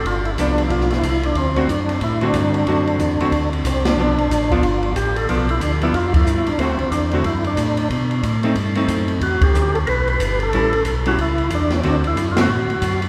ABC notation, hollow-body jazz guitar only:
X:1
M:4/4
L:1/8
Q:"Swing" 1/4=183
K:Dmix
V:1 name="Hollow-body jazz guitar"
z2 [=F,B,D]3 z3 | z [D,A,CF] z3 [D,A,CF]3 | [D,A,CF]3 [D,A,CF] z4 | [=F,B,D] z2 [F,B,D] z4 |
[=F,B,D] z2 [F,B,D] z4 | [D,A,CF] z2 [D,A,CF] z4 | z3 [A,C^D] z [A,CD]3 | z8 |
[G,^CE] z2 [G,CE] z4 | [D,A,CF] z2 [D,A,CF] z4 |]